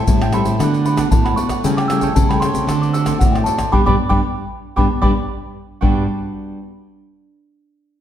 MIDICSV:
0, 0, Header, 1, 8, 480
1, 0, Start_track
1, 0, Key_signature, 1, "major"
1, 0, Tempo, 522193
1, 1504, Time_signature, 4, 2, 24, 8
1, 7360, End_track
2, 0, Start_track
2, 0, Title_t, "Celesta"
2, 0, Program_c, 0, 8
2, 0, Note_on_c, 0, 81, 78
2, 275, Note_off_c, 0, 81, 0
2, 312, Note_on_c, 0, 83, 79
2, 780, Note_off_c, 0, 83, 0
2, 791, Note_on_c, 0, 83, 77
2, 897, Note_off_c, 0, 83, 0
2, 1021, Note_on_c, 0, 81, 75
2, 1134, Note_off_c, 0, 81, 0
2, 1145, Note_on_c, 0, 83, 82
2, 1253, Note_on_c, 0, 85, 85
2, 1256, Note_off_c, 0, 83, 0
2, 1629, Note_off_c, 0, 85, 0
2, 1629, Note_on_c, 0, 86, 76
2, 1682, Note_off_c, 0, 86, 0
2, 1728, Note_on_c, 0, 88, 88
2, 1978, Note_on_c, 0, 81, 72
2, 1983, Note_off_c, 0, 88, 0
2, 2092, Note_off_c, 0, 81, 0
2, 2107, Note_on_c, 0, 83, 74
2, 2160, Note_off_c, 0, 83, 0
2, 2208, Note_on_c, 0, 84, 83
2, 2587, Note_off_c, 0, 84, 0
2, 2589, Note_on_c, 0, 86, 77
2, 2642, Note_off_c, 0, 86, 0
2, 2698, Note_on_c, 0, 88, 76
2, 2936, Note_on_c, 0, 78, 73
2, 2948, Note_off_c, 0, 88, 0
2, 3051, Note_off_c, 0, 78, 0
2, 3053, Note_on_c, 0, 79, 71
2, 3161, Note_on_c, 0, 81, 77
2, 3169, Note_off_c, 0, 79, 0
2, 3420, Note_off_c, 0, 81, 0
2, 3422, Note_on_c, 0, 86, 87
2, 3424, Note_on_c, 0, 83, 87
2, 3425, Note_on_c, 0, 79, 91
2, 3500, Note_off_c, 0, 83, 0
2, 3500, Note_off_c, 0, 86, 0
2, 3501, Note_off_c, 0, 79, 0
2, 3550, Note_on_c, 0, 86, 81
2, 3551, Note_on_c, 0, 79, 80
2, 3556, Note_on_c, 0, 83, 84
2, 3624, Note_off_c, 0, 86, 0
2, 3625, Note_off_c, 0, 79, 0
2, 3628, Note_off_c, 0, 83, 0
2, 3763, Note_on_c, 0, 86, 83
2, 3764, Note_on_c, 0, 83, 83
2, 3766, Note_on_c, 0, 79, 87
2, 3848, Note_off_c, 0, 86, 0
2, 3849, Note_off_c, 0, 83, 0
2, 3850, Note_off_c, 0, 79, 0
2, 4382, Note_on_c, 0, 86, 84
2, 4383, Note_on_c, 0, 79, 76
2, 4385, Note_on_c, 0, 83, 76
2, 4459, Note_off_c, 0, 86, 0
2, 4460, Note_off_c, 0, 79, 0
2, 4461, Note_off_c, 0, 83, 0
2, 4614, Note_on_c, 0, 86, 85
2, 4615, Note_on_c, 0, 79, 81
2, 4619, Note_on_c, 0, 83, 80
2, 4694, Note_off_c, 0, 86, 0
2, 4695, Note_off_c, 0, 79, 0
2, 4697, Note_off_c, 0, 83, 0
2, 7360, End_track
3, 0, Start_track
3, 0, Title_t, "Cavaquinho"
3, 0, Program_c, 1, 24
3, 197, Note_on_c, 1, 79, 46
3, 209, Note_on_c, 1, 76, 42
3, 220, Note_on_c, 1, 72, 34
3, 300, Note_off_c, 1, 79, 0
3, 301, Note_off_c, 1, 72, 0
3, 306, Note_off_c, 1, 76, 0
3, 307, Note_on_c, 1, 69, 65
3, 312, Note_on_c, 1, 72, 64
3, 319, Note_on_c, 1, 76, 76
3, 324, Note_on_c, 1, 79, 67
3, 536, Note_off_c, 1, 69, 0
3, 538, Note_off_c, 1, 72, 0
3, 542, Note_off_c, 1, 76, 0
3, 544, Note_off_c, 1, 79, 0
3, 552, Note_on_c, 1, 62, 61
3, 559, Note_on_c, 1, 71, 67
3, 567, Note_on_c, 1, 74, 65
3, 571, Note_on_c, 1, 78, 68
3, 778, Note_off_c, 1, 62, 0
3, 782, Note_off_c, 1, 71, 0
3, 785, Note_off_c, 1, 74, 0
3, 788, Note_off_c, 1, 78, 0
3, 789, Note_on_c, 1, 62, 52
3, 796, Note_on_c, 1, 71, 50
3, 805, Note_on_c, 1, 74, 55
3, 810, Note_on_c, 1, 78, 51
3, 881, Note_off_c, 1, 62, 0
3, 887, Note_off_c, 1, 71, 0
3, 890, Note_off_c, 1, 74, 0
3, 892, Note_on_c, 1, 62, 71
3, 895, Note_off_c, 1, 78, 0
3, 898, Note_on_c, 1, 71, 66
3, 901, Note_on_c, 1, 74, 74
3, 906, Note_on_c, 1, 78, 75
3, 981, Note_off_c, 1, 62, 0
3, 983, Note_off_c, 1, 71, 0
3, 985, Note_off_c, 1, 74, 0
3, 987, Note_off_c, 1, 78, 0
3, 1154, Note_on_c, 1, 78, 50
3, 1169, Note_on_c, 1, 74, 38
3, 1176, Note_on_c, 1, 71, 42
3, 1256, Note_off_c, 1, 71, 0
3, 1259, Note_off_c, 1, 78, 0
3, 1261, Note_on_c, 1, 62, 62
3, 1267, Note_off_c, 1, 74, 0
3, 1267, Note_on_c, 1, 71, 69
3, 1276, Note_on_c, 1, 74, 72
3, 1277, Note_on_c, 1, 78, 68
3, 1360, Note_off_c, 1, 78, 0
3, 1371, Note_off_c, 1, 74, 0
3, 1371, Note_on_c, 1, 78, 48
3, 1373, Note_off_c, 1, 62, 0
3, 1376, Note_off_c, 1, 71, 0
3, 1382, Note_on_c, 1, 74, 39
3, 1392, Note_on_c, 1, 71, 35
3, 1488, Note_off_c, 1, 78, 0
3, 1493, Note_off_c, 1, 74, 0
3, 1498, Note_off_c, 1, 71, 0
3, 1503, Note_on_c, 1, 67, 56
3, 1515, Note_on_c, 1, 69, 64
3, 1520, Note_on_c, 1, 73, 64
3, 1522, Note_on_c, 1, 79, 68
3, 1614, Note_off_c, 1, 67, 0
3, 1620, Note_off_c, 1, 69, 0
3, 1622, Note_off_c, 1, 73, 0
3, 1623, Note_off_c, 1, 79, 0
3, 1644, Note_on_c, 1, 79, 48
3, 1653, Note_on_c, 1, 73, 47
3, 1662, Note_on_c, 1, 69, 39
3, 1740, Note_off_c, 1, 69, 0
3, 1741, Note_on_c, 1, 67, 47
3, 1744, Note_off_c, 1, 79, 0
3, 1746, Note_off_c, 1, 73, 0
3, 1751, Note_on_c, 1, 69, 49
3, 1757, Note_on_c, 1, 73, 51
3, 1763, Note_on_c, 1, 79, 49
3, 1846, Note_off_c, 1, 67, 0
3, 1853, Note_off_c, 1, 69, 0
3, 1853, Note_off_c, 1, 73, 0
3, 1857, Note_on_c, 1, 67, 72
3, 1859, Note_off_c, 1, 79, 0
3, 1864, Note_on_c, 1, 69, 76
3, 1864, Note_on_c, 1, 73, 78
3, 1870, Note_on_c, 1, 79, 70
3, 1943, Note_off_c, 1, 67, 0
3, 1946, Note_off_c, 1, 73, 0
3, 1947, Note_off_c, 1, 69, 0
3, 1950, Note_off_c, 1, 79, 0
3, 2119, Note_on_c, 1, 79, 52
3, 2129, Note_on_c, 1, 73, 45
3, 2134, Note_on_c, 1, 69, 42
3, 2221, Note_off_c, 1, 69, 0
3, 2222, Note_off_c, 1, 79, 0
3, 2225, Note_on_c, 1, 67, 69
3, 2227, Note_off_c, 1, 73, 0
3, 2232, Note_on_c, 1, 69, 68
3, 2242, Note_on_c, 1, 73, 69
3, 2245, Note_on_c, 1, 79, 71
3, 2455, Note_off_c, 1, 67, 0
3, 2458, Note_off_c, 1, 69, 0
3, 2463, Note_off_c, 1, 73, 0
3, 2464, Note_on_c, 1, 66, 60
3, 2465, Note_off_c, 1, 79, 0
3, 2478, Note_on_c, 1, 69, 64
3, 2483, Note_on_c, 1, 72, 69
3, 2488, Note_on_c, 1, 74, 72
3, 2687, Note_off_c, 1, 66, 0
3, 2692, Note_off_c, 1, 69, 0
3, 2698, Note_off_c, 1, 72, 0
3, 2698, Note_on_c, 1, 66, 50
3, 2702, Note_off_c, 1, 74, 0
3, 2703, Note_on_c, 1, 69, 49
3, 2709, Note_on_c, 1, 72, 48
3, 2713, Note_on_c, 1, 74, 52
3, 2806, Note_off_c, 1, 66, 0
3, 2812, Note_off_c, 1, 69, 0
3, 2814, Note_off_c, 1, 72, 0
3, 2817, Note_on_c, 1, 66, 61
3, 2819, Note_off_c, 1, 74, 0
3, 2823, Note_on_c, 1, 69, 68
3, 2825, Note_on_c, 1, 72, 78
3, 2831, Note_on_c, 1, 74, 77
3, 2903, Note_off_c, 1, 66, 0
3, 2906, Note_off_c, 1, 69, 0
3, 2908, Note_off_c, 1, 72, 0
3, 2910, Note_off_c, 1, 74, 0
3, 3064, Note_on_c, 1, 74, 45
3, 3075, Note_on_c, 1, 72, 44
3, 3085, Note_on_c, 1, 69, 38
3, 3171, Note_off_c, 1, 69, 0
3, 3174, Note_off_c, 1, 74, 0
3, 3177, Note_off_c, 1, 72, 0
3, 3179, Note_on_c, 1, 66, 64
3, 3182, Note_on_c, 1, 69, 60
3, 3188, Note_on_c, 1, 72, 67
3, 3195, Note_on_c, 1, 74, 76
3, 3276, Note_off_c, 1, 74, 0
3, 3287, Note_on_c, 1, 74, 40
3, 3288, Note_off_c, 1, 72, 0
3, 3292, Note_off_c, 1, 66, 0
3, 3293, Note_off_c, 1, 69, 0
3, 3299, Note_on_c, 1, 72, 42
3, 3310, Note_on_c, 1, 69, 36
3, 3406, Note_off_c, 1, 74, 0
3, 3412, Note_off_c, 1, 72, 0
3, 3417, Note_off_c, 1, 69, 0
3, 3431, Note_on_c, 1, 67, 82
3, 3434, Note_on_c, 1, 71, 81
3, 3438, Note_on_c, 1, 74, 76
3, 3505, Note_off_c, 1, 74, 0
3, 3506, Note_off_c, 1, 67, 0
3, 3506, Note_off_c, 1, 71, 0
3, 3554, Note_on_c, 1, 74, 93
3, 3557, Note_on_c, 1, 71, 92
3, 3562, Note_on_c, 1, 67, 70
3, 3628, Note_off_c, 1, 71, 0
3, 3629, Note_off_c, 1, 67, 0
3, 3629, Note_off_c, 1, 74, 0
3, 3764, Note_on_c, 1, 67, 91
3, 3769, Note_on_c, 1, 71, 91
3, 3770, Note_on_c, 1, 74, 85
3, 3850, Note_off_c, 1, 67, 0
3, 3851, Note_off_c, 1, 71, 0
3, 3852, Note_off_c, 1, 74, 0
3, 4376, Note_on_c, 1, 67, 79
3, 4381, Note_on_c, 1, 71, 73
3, 4383, Note_on_c, 1, 74, 72
3, 4456, Note_off_c, 1, 74, 0
3, 4458, Note_off_c, 1, 67, 0
3, 4458, Note_off_c, 1, 71, 0
3, 4610, Note_on_c, 1, 74, 85
3, 4611, Note_on_c, 1, 71, 83
3, 4616, Note_on_c, 1, 67, 77
3, 4692, Note_off_c, 1, 71, 0
3, 4693, Note_off_c, 1, 67, 0
3, 4694, Note_off_c, 1, 74, 0
3, 5339, Note_on_c, 1, 66, 59
3, 5346, Note_on_c, 1, 67, 63
3, 5350, Note_on_c, 1, 71, 66
3, 5358, Note_on_c, 1, 74, 70
3, 5533, Note_off_c, 1, 66, 0
3, 5536, Note_off_c, 1, 67, 0
3, 5538, Note_off_c, 1, 71, 0
3, 5542, Note_off_c, 1, 74, 0
3, 7360, End_track
4, 0, Start_track
4, 0, Title_t, "Nylon-string guitar"
4, 0, Program_c, 2, 24
4, 64, Note_on_c, 2, 52, 56
4, 64, Note_on_c, 2, 55, 52
4, 68, Note_on_c, 2, 60, 50
4, 74, Note_on_c, 2, 64, 60
4, 204, Note_off_c, 2, 55, 0
4, 207, Note_off_c, 2, 60, 0
4, 209, Note_off_c, 2, 64, 0
4, 302, Note_on_c, 2, 55, 52
4, 307, Note_on_c, 2, 60, 51
4, 311, Note_on_c, 2, 64, 51
4, 504, Note_off_c, 2, 55, 0
4, 507, Note_off_c, 2, 60, 0
4, 508, Note_off_c, 2, 64, 0
4, 521, Note_off_c, 2, 52, 0
4, 545, Note_on_c, 2, 50, 51
4, 549, Note_on_c, 2, 57, 58
4, 553, Note_on_c, 2, 59, 57
4, 555, Note_on_c, 2, 66, 62
4, 867, Note_off_c, 2, 57, 0
4, 868, Note_off_c, 2, 59, 0
4, 871, Note_off_c, 2, 66, 0
4, 885, Note_on_c, 2, 57, 52
4, 890, Note_on_c, 2, 59, 54
4, 894, Note_on_c, 2, 66, 60
4, 1001, Note_off_c, 2, 50, 0
4, 1029, Note_on_c, 2, 45, 53
4, 1216, Note_off_c, 2, 57, 0
4, 1219, Note_off_c, 2, 59, 0
4, 1220, Note_off_c, 2, 66, 0
4, 1260, Note_on_c, 2, 57, 49
4, 1263, Note_on_c, 2, 59, 49
4, 1267, Note_on_c, 2, 66, 52
4, 1482, Note_off_c, 2, 45, 0
4, 1483, Note_off_c, 2, 57, 0
4, 1484, Note_off_c, 2, 59, 0
4, 1486, Note_off_c, 2, 66, 0
4, 1509, Note_on_c, 2, 49, 55
4, 1509, Note_on_c, 2, 55, 52
4, 1510, Note_on_c, 2, 57, 55
4, 1514, Note_on_c, 2, 64, 57
4, 1706, Note_off_c, 2, 55, 0
4, 1708, Note_off_c, 2, 57, 0
4, 1710, Note_off_c, 2, 64, 0
4, 1740, Note_on_c, 2, 55, 54
4, 1747, Note_on_c, 2, 57, 59
4, 1749, Note_on_c, 2, 64, 66
4, 1963, Note_off_c, 2, 49, 0
4, 1984, Note_on_c, 2, 49, 51
4, 2064, Note_off_c, 2, 55, 0
4, 2066, Note_off_c, 2, 57, 0
4, 2068, Note_off_c, 2, 64, 0
4, 2108, Note_on_c, 2, 55, 59
4, 2113, Note_on_c, 2, 57, 61
4, 2118, Note_on_c, 2, 64, 57
4, 2307, Note_off_c, 2, 55, 0
4, 2311, Note_off_c, 2, 57, 0
4, 2312, Note_off_c, 2, 64, 0
4, 2326, Note_on_c, 2, 57, 56
4, 2332, Note_on_c, 2, 60, 62
4, 2334, Note_on_c, 2, 66, 71
4, 2440, Note_off_c, 2, 49, 0
4, 2466, Note_on_c, 2, 50, 55
4, 2777, Note_off_c, 2, 57, 0
4, 2778, Note_off_c, 2, 60, 0
4, 2780, Note_off_c, 2, 66, 0
4, 2806, Note_on_c, 2, 57, 56
4, 2812, Note_on_c, 2, 60, 60
4, 2814, Note_on_c, 2, 66, 61
4, 2921, Note_off_c, 2, 50, 0
4, 2951, Note_on_c, 2, 45, 51
4, 3137, Note_off_c, 2, 57, 0
4, 3138, Note_off_c, 2, 60, 0
4, 3140, Note_off_c, 2, 66, 0
4, 3179, Note_on_c, 2, 57, 48
4, 3184, Note_on_c, 2, 60, 54
4, 3191, Note_on_c, 2, 66, 59
4, 3323, Note_off_c, 2, 57, 0
4, 3325, Note_off_c, 2, 60, 0
4, 3327, Note_off_c, 2, 66, 0
4, 3404, Note_off_c, 2, 45, 0
4, 3423, Note_on_c, 2, 55, 84
4, 3428, Note_on_c, 2, 62, 82
4, 3432, Note_on_c, 2, 59, 84
4, 3501, Note_off_c, 2, 55, 0
4, 3502, Note_off_c, 2, 62, 0
4, 3503, Note_off_c, 2, 59, 0
4, 3552, Note_on_c, 2, 55, 86
4, 3554, Note_on_c, 2, 62, 87
4, 3559, Note_on_c, 2, 59, 88
4, 3626, Note_off_c, 2, 55, 0
4, 3626, Note_off_c, 2, 62, 0
4, 3627, Note_off_c, 2, 59, 0
4, 3763, Note_on_c, 2, 55, 84
4, 3767, Note_on_c, 2, 62, 89
4, 3770, Note_on_c, 2, 59, 85
4, 3849, Note_off_c, 2, 55, 0
4, 3850, Note_off_c, 2, 59, 0
4, 3850, Note_off_c, 2, 62, 0
4, 4388, Note_on_c, 2, 55, 87
4, 4392, Note_on_c, 2, 62, 91
4, 4394, Note_on_c, 2, 59, 90
4, 4463, Note_off_c, 2, 59, 0
4, 4464, Note_off_c, 2, 55, 0
4, 4464, Note_off_c, 2, 62, 0
4, 4616, Note_on_c, 2, 55, 80
4, 4619, Note_on_c, 2, 59, 83
4, 4619, Note_on_c, 2, 62, 82
4, 4696, Note_off_c, 2, 55, 0
4, 4696, Note_off_c, 2, 59, 0
4, 4697, Note_off_c, 2, 62, 0
4, 5341, Note_on_c, 2, 55, 59
4, 5349, Note_on_c, 2, 59, 59
4, 5354, Note_on_c, 2, 62, 62
4, 5361, Note_on_c, 2, 66, 60
4, 6051, Note_off_c, 2, 55, 0
4, 6051, Note_off_c, 2, 59, 0
4, 6051, Note_off_c, 2, 62, 0
4, 6051, Note_off_c, 2, 66, 0
4, 7360, End_track
5, 0, Start_track
5, 0, Title_t, "Nylon-string guitar"
5, 0, Program_c, 3, 24
5, 73, Note_on_c, 3, 45, 73
5, 375, Note_off_c, 3, 45, 0
5, 418, Note_on_c, 3, 45, 80
5, 522, Note_off_c, 3, 45, 0
5, 546, Note_on_c, 3, 50, 88
5, 953, Note_off_c, 3, 50, 0
5, 1034, Note_on_c, 3, 45, 83
5, 1234, Note_off_c, 3, 45, 0
5, 1514, Note_on_c, 3, 49, 99
5, 1918, Note_off_c, 3, 49, 0
5, 1985, Note_on_c, 3, 49, 80
5, 2291, Note_off_c, 3, 49, 0
5, 2330, Note_on_c, 3, 49, 73
5, 2438, Note_off_c, 3, 49, 0
5, 2457, Note_on_c, 3, 50, 101
5, 2868, Note_off_c, 3, 50, 0
5, 2947, Note_on_c, 3, 45, 88
5, 3150, Note_off_c, 3, 45, 0
5, 3426, Note_on_c, 3, 43, 81
5, 3514, Note_off_c, 3, 43, 0
5, 3551, Note_on_c, 3, 43, 90
5, 3637, Note_off_c, 3, 43, 0
5, 3769, Note_on_c, 3, 43, 84
5, 3865, Note_off_c, 3, 43, 0
5, 4386, Note_on_c, 3, 43, 86
5, 4474, Note_off_c, 3, 43, 0
5, 4618, Note_on_c, 3, 43, 90
5, 4710, Note_off_c, 3, 43, 0
5, 5353, Note_on_c, 3, 43, 77
5, 5571, Note_off_c, 3, 43, 0
5, 7360, End_track
6, 0, Start_track
6, 0, Title_t, "Pandeiro"
6, 69, Note_on_c, 9, 54, 80
6, 161, Note_off_c, 9, 54, 0
6, 198, Note_on_c, 9, 54, 32
6, 290, Note_off_c, 9, 54, 0
6, 299, Note_on_c, 9, 54, 60
6, 391, Note_off_c, 9, 54, 0
6, 418, Note_on_c, 9, 54, 55
6, 510, Note_off_c, 9, 54, 0
6, 553, Note_on_c, 9, 54, 72
6, 645, Note_off_c, 9, 54, 0
6, 681, Note_on_c, 9, 54, 28
6, 773, Note_off_c, 9, 54, 0
6, 786, Note_on_c, 9, 54, 63
6, 878, Note_off_c, 9, 54, 0
6, 895, Note_on_c, 9, 54, 53
6, 987, Note_off_c, 9, 54, 0
6, 1026, Note_on_c, 9, 54, 81
6, 1118, Note_off_c, 9, 54, 0
6, 1155, Note_on_c, 9, 54, 30
6, 1247, Note_off_c, 9, 54, 0
6, 1263, Note_on_c, 9, 54, 60
6, 1355, Note_off_c, 9, 54, 0
6, 1373, Note_on_c, 9, 54, 56
6, 1465, Note_off_c, 9, 54, 0
6, 1509, Note_on_c, 9, 54, 76
6, 1601, Note_off_c, 9, 54, 0
6, 1637, Note_on_c, 9, 54, 29
6, 1729, Note_off_c, 9, 54, 0
6, 1745, Note_on_c, 9, 54, 61
6, 1837, Note_off_c, 9, 54, 0
6, 1850, Note_on_c, 9, 54, 49
6, 1942, Note_off_c, 9, 54, 0
6, 1987, Note_on_c, 9, 54, 81
6, 2079, Note_off_c, 9, 54, 0
6, 2119, Note_on_c, 9, 54, 33
6, 2211, Note_off_c, 9, 54, 0
6, 2226, Note_on_c, 9, 54, 57
6, 2317, Note_off_c, 9, 54, 0
6, 2341, Note_on_c, 9, 54, 53
6, 2433, Note_off_c, 9, 54, 0
6, 2469, Note_on_c, 9, 54, 69
6, 2561, Note_off_c, 9, 54, 0
6, 2602, Note_on_c, 9, 54, 31
6, 2694, Note_off_c, 9, 54, 0
6, 2704, Note_on_c, 9, 54, 61
6, 2796, Note_off_c, 9, 54, 0
6, 2813, Note_on_c, 9, 54, 51
6, 2905, Note_off_c, 9, 54, 0
6, 2952, Note_on_c, 9, 54, 73
6, 3044, Note_off_c, 9, 54, 0
6, 3083, Note_on_c, 9, 54, 29
6, 3175, Note_off_c, 9, 54, 0
6, 3183, Note_on_c, 9, 54, 61
6, 3275, Note_off_c, 9, 54, 0
6, 3295, Note_on_c, 9, 54, 54
6, 3387, Note_off_c, 9, 54, 0
6, 7360, End_track
7, 0, Start_track
7, 0, Title_t, "Tamborim"
7, 198, Note_on_c, 9, 60, 80
7, 290, Note_off_c, 9, 60, 0
7, 299, Note_on_c, 9, 60, 72
7, 391, Note_off_c, 9, 60, 0
7, 553, Note_on_c, 9, 60, 76
7, 645, Note_off_c, 9, 60, 0
7, 895, Note_on_c, 9, 60, 76
7, 987, Note_off_c, 9, 60, 0
7, 1155, Note_on_c, 9, 60, 70
7, 1247, Note_off_c, 9, 60, 0
7, 1373, Note_on_c, 9, 60, 72
7, 1465, Note_off_c, 9, 60, 0
7, 1637, Note_on_c, 9, 60, 76
7, 1729, Note_off_c, 9, 60, 0
7, 1745, Note_on_c, 9, 60, 74
7, 1837, Note_off_c, 9, 60, 0
7, 2119, Note_on_c, 9, 60, 74
7, 2211, Note_off_c, 9, 60, 0
7, 2226, Note_on_c, 9, 60, 73
7, 2317, Note_off_c, 9, 60, 0
7, 2469, Note_on_c, 9, 60, 72
7, 2561, Note_off_c, 9, 60, 0
7, 2813, Note_on_c, 9, 60, 73
7, 2905, Note_off_c, 9, 60, 0
7, 3083, Note_on_c, 9, 60, 65
7, 3175, Note_off_c, 9, 60, 0
7, 3295, Note_on_c, 9, 60, 67
7, 3387, Note_off_c, 9, 60, 0
7, 7360, End_track
8, 0, Start_track
8, 0, Title_t, "Drums"
8, 69, Note_on_c, 9, 82, 82
8, 69, Note_on_c, 9, 87, 93
8, 161, Note_off_c, 9, 82, 0
8, 161, Note_off_c, 9, 87, 0
8, 198, Note_on_c, 9, 82, 34
8, 290, Note_off_c, 9, 82, 0
8, 299, Note_on_c, 9, 82, 64
8, 299, Note_on_c, 9, 87, 27
8, 391, Note_off_c, 9, 82, 0
8, 391, Note_off_c, 9, 87, 0
8, 418, Note_on_c, 9, 82, 73
8, 418, Note_on_c, 9, 87, 31
8, 510, Note_off_c, 9, 82, 0
8, 510, Note_off_c, 9, 87, 0
8, 553, Note_on_c, 9, 82, 71
8, 553, Note_on_c, 9, 87, 52
8, 645, Note_off_c, 9, 82, 0
8, 645, Note_off_c, 9, 87, 0
8, 681, Note_on_c, 9, 82, 29
8, 773, Note_off_c, 9, 82, 0
8, 786, Note_on_c, 9, 82, 62
8, 878, Note_off_c, 9, 82, 0
8, 895, Note_on_c, 9, 82, 74
8, 895, Note_on_c, 9, 87, 33
8, 987, Note_off_c, 9, 82, 0
8, 987, Note_off_c, 9, 87, 0
8, 1026, Note_on_c, 9, 82, 81
8, 1026, Note_on_c, 9, 87, 97
8, 1118, Note_off_c, 9, 82, 0
8, 1118, Note_off_c, 9, 87, 0
8, 1155, Note_on_c, 9, 82, 28
8, 1247, Note_off_c, 9, 82, 0
8, 1263, Note_on_c, 9, 82, 62
8, 1355, Note_off_c, 9, 82, 0
8, 1373, Note_on_c, 9, 82, 71
8, 1373, Note_on_c, 9, 87, 31
8, 1465, Note_off_c, 9, 82, 0
8, 1465, Note_off_c, 9, 87, 0
8, 1509, Note_on_c, 9, 82, 84
8, 1509, Note_on_c, 9, 87, 57
8, 1601, Note_off_c, 9, 82, 0
8, 1601, Note_off_c, 9, 87, 0
8, 1637, Note_on_c, 9, 82, 32
8, 1729, Note_off_c, 9, 82, 0
8, 1745, Note_on_c, 9, 82, 63
8, 1837, Note_off_c, 9, 82, 0
8, 1850, Note_on_c, 9, 82, 71
8, 1850, Note_on_c, 9, 87, 31
8, 1942, Note_off_c, 9, 82, 0
8, 1942, Note_off_c, 9, 87, 0
8, 1987, Note_on_c, 9, 82, 75
8, 1987, Note_on_c, 9, 87, 94
8, 2079, Note_off_c, 9, 82, 0
8, 2079, Note_off_c, 9, 87, 0
8, 2119, Note_on_c, 9, 82, 31
8, 2211, Note_off_c, 9, 82, 0
8, 2226, Note_on_c, 9, 82, 62
8, 2226, Note_on_c, 9, 87, 28
8, 2317, Note_off_c, 9, 82, 0
8, 2317, Note_off_c, 9, 87, 0
8, 2341, Note_on_c, 9, 82, 74
8, 2341, Note_on_c, 9, 87, 31
8, 2433, Note_off_c, 9, 82, 0
8, 2433, Note_off_c, 9, 87, 0
8, 2469, Note_on_c, 9, 82, 66
8, 2469, Note_on_c, 9, 87, 51
8, 2561, Note_off_c, 9, 82, 0
8, 2561, Note_off_c, 9, 87, 0
8, 2602, Note_on_c, 9, 82, 28
8, 2694, Note_off_c, 9, 82, 0
8, 2704, Note_on_c, 9, 82, 63
8, 2796, Note_off_c, 9, 82, 0
8, 2813, Note_on_c, 9, 82, 73
8, 2813, Note_on_c, 9, 87, 30
8, 2905, Note_off_c, 9, 82, 0
8, 2905, Note_off_c, 9, 87, 0
8, 2952, Note_on_c, 9, 82, 76
8, 2952, Note_on_c, 9, 87, 91
8, 3044, Note_off_c, 9, 82, 0
8, 3044, Note_off_c, 9, 87, 0
8, 3083, Note_on_c, 9, 82, 28
8, 3175, Note_off_c, 9, 82, 0
8, 3183, Note_on_c, 9, 82, 67
8, 3275, Note_off_c, 9, 82, 0
8, 3295, Note_on_c, 9, 82, 74
8, 3295, Note_on_c, 9, 87, 33
8, 3387, Note_off_c, 9, 82, 0
8, 3387, Note_off_c, 9, 87, 0
8, 3430, Note_on_c, 9, 87, 92
8, 3522, Note_off_c, 9, 87, 0
8, 3561, Note_on_c, 9, 87, 94
8, 3653, Note_off_c, 9, 87, 0
8, 3775, Note_on_c, 9, 87, 89
8, 3867, Note_off_c, 9, 87, 0
8, 4386, Note_on_c, 9, 87, 82
8, 4478, Note_off_c, 9, 87, 0
8, 4620, Note_on_c, 9, 87, 89
8, 4712, Note_off_c, 9, 87, 0
8, 5354, Note_on_c, 9, 87, 95
8, 5446, Note_off_c, 9, 87, 0
8, 7360, End_track
0, 0, End_of_file